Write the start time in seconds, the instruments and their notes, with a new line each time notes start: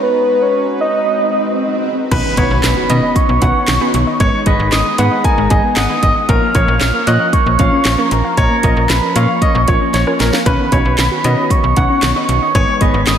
Already playing: analog synth pad G#3 D#4 F#4 B4 A#5
0.03 soft synth lead B4, swell
0.42 soft synth lead C#5
0.81 soft synth lead D#5
2.11 fm bass B1, synth pluck D#3 B3 C#4 D#4 F#4 B4, analog synth pad B3 C#4 D#4, grand piano B4, soft synth lead B5, kick, closed hi-hat, crash, impact
2.25 synth pluck B3
2.37 fm bass B1, synth pluck D#3 B3 C#4 D#4 F#4 B4, grand piano C#5, kick, closed hi-hat
2.51 fm bass B1
2.64 fm bass B1, synth pluck D#3, soft synth lead B5, snare, clap, closed hi-hat
2.77 synth pluck F#4
2.90 fm bass B2, synth pluck D#3 B3 C#4 D#4 F#4 B4, grand piano D#5, closed hi-hat
3.03 synth pluck D#5
3.16 soft synth lead C#6, kick, closed hi-hat
3.29 fm bass B1, synth pluck B3
3.42 fm bass B1, synth pluck D#3 B3 C#4 D#4 F#4 B4, grand piano F#5, kick, closed hi-hat
3.55 synth pluck C#4
3.68 fm bass B1, synth pluck D#3, snare, clap, closed hi-hat
3.81 synth pluck B3 C#4 D#4 F#4 B4
3.94 fm bass B1, synth pluck D#3, closed hi-hat
4.07 synth pluck D#5
4.20 fm bass G#1, synth pluck D#3 G#3 B3 D#4 G#4 B4, analog synth pad G#3 B3, grand piano C#5, soft synth lead C#6, kick, closed hi-hat
4.33 synth pluck G#3
4.46 fm bass G#1, synth pluck D#3 G#3 B3 D#4 G#4 B4, grand piano D#5, soft synth lead B5, kick, closed hi-hat
4.59 fm bass G#1
4.72 fm bass G#1, synth pluck D#3, soft synth lead D#6, snare, clap, closed hi-hat
4.85 synth pluck G#4
4.98 fm bass G#2, synth pluck D#3 G#3 B3 D#4 G#4 B4, grand piano F#5, soft synth lead B5, closed hi-hat
5.11 synth pluck D#5
5.24 grand piano G#5, soft synth lead A#5, kick, closed hi-hat
5.37 fm bass G#1, synth pluck G#3
5.50 fm bass G#1, synth pluck D#3 G#3 B3 D#4 G#4 B4, grand piano D#5, soft synth lead G#5, kick, closed hi-hat
5.64 synth pluck B3
5.76 fm bass G#1, synth pluck D#3, grand piano F#5, soft synth lead D#6, snare, clap, closed hi-hat
5.90 synth pluck G#3 B3 D#4 G#4 B4
6.03 fm bass G#1, synth pluck D#3, grand piano D#5, soft synth lead D#6, kick, closed hi-hat
6.16 synth pluck D#5
6.29 fm bass A#1, synth pluck F3 A#3 C#4 F4 A#4 C#5, analog synth pad F3 A#3 C#4, grand piano A#4, soft synth lead F6, kick, closed hi-hat
6.42 synth pluck A#3
6.55 fm bass A#1, synth pluck F3 A#3 C#4 F4 A#4 C#5, grand piano C#5, kick, closed hi-hat
6.68 fm bass A#1
6.81 fm bass A#1, synth pluck F3, snare, clap, closed hi-hat
6.94 synth pluck A#4
7.07 fm bass A#2, synth pluck F3 A#3 C#4 F4 A#4 C#5, grand piano D#5, soft synth lead F#6, closed hi-hat
7.20 synth pluck F5
7.33 soft synth lead C#6, kick, closed hi-hat
7.46 fm bass A#1, synth pluck A#3
7.59 fm bass A#1, synth pluck F3 A#3 C#4 F4 A#4 C#5, grand piano F5, kick, closed hi-hat
7.72 synth pluck C#4
7.85 fm bass A#1, synth pluck F3, snare, clap, closed hi-hat
7.98 synth pluck A#3 C#4 F4 A#4 C#5
8.11 fm bass A#1, synth pluck F3, soft synth lead A#5, closed hi-hat
8.24 synth pluck F5
8.37 fm bass A#1, synth pluck A#3 C#4 F4 A#4 D#5, grand piano C#5, soft synth lead A#5, kick, closed hi-hat
8.51 synth pluck A#3
8.63 fm bass A#1, synth pluck F3 A#3 C#4 F4 A#4 C#5, grand piano D#5, kick, closed hi-hat
8.77 fm bass A#1
8.90 fm bass A#1, synth pluck F3, soft synth lead B5, snare, clap, closed hi-hat
9.03 synth pluck A#4
9.15 fm bass A#2, synth pluck F3 A#3 C#4 F4 A#4 C#5, grand piano F5, soft synth lead C#6, closed hi-hat
9.29 synth pluck F5
9.42 grand piano D#5, kick, closed hi-hat
9.55 fm bass A#1, synth pluck A#3
9.68 fm bass A#1, synth pluck F3 A#3 C#4 F4 A#4 C#5, grand piano C#5, kick, closed hi-hat
9.81 synth pluck C#4
9.94 fm bass A#1, synth pluck F3, grand piano C#5, snare, closed hi-hat
10.07 synth pluck A#3 C#4 F4 A#4 C#5
10.20 fm bass A#1, synth pluck F3, grand piano A#4, snare, closed hi-hat
10.33 synth pluck F5, snare
10.46 fm bass B1, synth pluck D#3 C#4 D#4 F#4 B4 C#5, analog synth pad D#3 B3, grand piano B4, soft synth lead B5, kick, closed hi-hat
10.59 synth pluck B3
10.72 fm bass B1, synth pluck D#3 C#4 D#4 F#4 B4 C#5, grand piano C#5, kick, closed hi-hat
10.85 fm bass B1
10.98 fm bass B1, synth pluck D#3, snare, clap, closed hi-hat
11.11 synth pluck F#4
11.24 fm bass B2, synth pluck D#3 C#4 D#4 F#4 B4 C#5, grand piano D#5, closed hi-hat
11.38 synth pluck D#5
11.50 soft synth lead C#6, kick, closed hi-hat
11.64 fm bass B1, synth pluck B3
11.76 fm bass B1, synth pluck D#3 C#4 D#4 F#4 B4 C#5, grand piano F#5, kick, closed hi-hat
11.90 synth pluck C#4
12.03 fm bass B1, synth pluck D#3, snare, clap, closed hi-hat
12.16 synth pluck C#4 D#4 F#4 B4 D#5
12.29 fm bass B1, synth pluck D#3, soft synth lead C#6, closed hi-hat
12.42 synth pluck D#5
12.55 fm bass G#1, synth pluck D#3 B3 D#4 G#4 B4 D#5, analog synth pad G#3, grand piano C#5, kick, closed hi-hat
12.68 synth pluck G#3
12.81 fm bass G#1, synth pluck D#3 B3 D#4 G#4 B4 D#5, grand piano D#5, soft synth lead B5, kick, closed hi-hat
12.94 fm bass G#1
13.07 fm bass G#1, synth pluck D#3, soft synth lead D#6, snare, clap, closed hi-hat